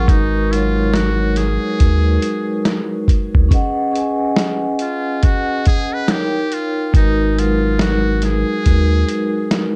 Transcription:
Already playing: C#4 F4 G#4 F5 C#6 F6
0.06 G#1 G#3 D#4 F#4, kick, closed hi-hat
0.10 A#4 B4
0.49 F#3 G#3 D#4 F4, closed hi-hat
0.54 A#4 C#5
0.94 F#4, snare, closed hi-hat
1.36 G#4, snare, closed hi-hat
1.78 D#2 G#3 D#4 F#4, kick, closed hi-hat
1.82 A#4 B4
2.22 closed hi-hat
2.65 snare, closed hi-hat
3.08 kick, closed hi-hat
3.35 D2, kick
3.49 C#4 G#4 B4, kick, closed hi-hat
3.53 D#5 F#5
3.92 C#4 G#4 B4, closed hi-hat
3.96 D#5 G#5
4.36 snare, closed hi-hat
4.79 F4, closed hi-hat
5.21 C#4 F#4 G#4 B4, kick, closed hi-hat
5.25 D#5 F#5
5.66 G#4, kick, closed hi-hat
5.93 B4
6.07 D#4 G4 A#4 C#5, snare, closed hi-hat
6.11 F5
6.52 F4, closed hi-hat
6.92 G#1 G#3 D#4 F#4, kick, closed hi-hat
6.97 A#4 B4
7.36 F#3 G#3 D#4 F4, closed hi-hat
7.40 A#4 B4
7.79 F#4, snare, closed hi-hat
8.22 G#4, snare, closed hi-hat
8.63 D#2 G#3 D#4 F#4, kick, closed hi-hat
8.68 A#4 B4
9.09 closed hi-hat
9.51 snare, closed hi-hat

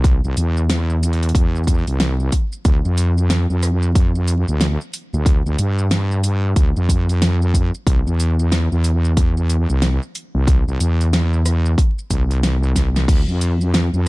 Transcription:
Already playing: C2
0.04 kick, closed hi-hat, shaker
0.24 C2, shaker
0.37 E2, closed hi-hat, shaker
0.57 shaker
0.70 snare, closed hi-hat, shaker
0.90 shaker
1.03 closed hi-hat, shaker
1.13 closed hi-hat
1.23 closed hi-hat, shaker
1.29 closed hi-hat
1.35 E2, kick, closed hi-hat, shaker
1.55 shaker
1.57 shaker
1.64 kick, closed hi-hat, shaker
1.68 shaker
1.87 C2, closed hi-hat, shaker
2.00 snare, closed hi-hat, shaker
2.20 shaker
2.32 kick, closed hi-hat, shaker
2.52 shaker
2.65 D2, kick, closed hi-hat, shaker
2.85 F2, shaker
2.98 closed hi-hat, shaker
3.18 shaker
3.30 snare, closed hi-hat, shaker
3.50 F2, shaker
3.63 cross-stick, closed hi-hat, shaker
3.83 shaker
3.95 kick, closed hi-hat, shaker
4.15 shaker
4.28 closed hi-hat, shaker
4.48 D2, shaker
4.61 snare, closed hi-hat, shaker
4.81 shaker
4.93 closed hi-hat, shaker
5.13 D2, shaker
5.26 kick, closed hi-hat, shaker
5.46 D2, shaker
5.59 G2, closed hi-hat, shaker
5.78 shaker
5.91 snare, closed hi-hat, shaker
6.11 shaker
6.24 closed hi-hat, shaker
6.56 D2, kick, closed hi-hat, shaker
6.76 F2, shaker
6.89 kick, closed hi-hat, shaker
7.09 closed hi-hat, shaker
7.22 snare, closed hi-hat, shaker
7.42 shaker
7.54 kick, closed hi-hat, shaker
7.75 shaker
7.87 C2, kick, closed hi-hat, shaker
8.07 E2, shaker
8.20 closed hi-hat, shaker
8.39 shaker
8.52 snare, closed hi-hat, shaker
8.72 E2, shaker
8.84 closed hi-hat, shaker
9.05 shaker
9.17 kick, closed hi-hat, shaker
9.37 shaker
9.50 closed hi-hat, shaker
9.70 C2, shaker
9.82 snare, closed hi-hat, shaker
10.02 shaker
10.15 closed hi-hat, shaker
10.35 C2
10.47 kick, closed hi-hat, shaker
10.68 C2, shaker
10.80 E2, closed hi-hat, shaker
11.01 closed hi-hat, shaker
11.13 snare, closed hi-hat, shaker
11.33 shaker
11.46 cross-stick, closed hi-hat, shaker
11.66 shaker
11.78 kick, closed hi-hat, shaker
11.98 shaker
12.10 C2, kick, closed hi-hat, shaker
12.31 closed hi-hat, shaker
12.43 snare, closed hi-hat, shaker
12.63 shaker
12.76 kick, snare, closed hi-hat, shaker
12.96 snare, shaker
13.08 D2, kick, closed hi-hat, crash, shaker
13.28 F2, shaker
13.41 closed hi-hat, shaker
13.61 shaker
13.74 snare, closed hi-hat, shaker
13.93 F2, shaker

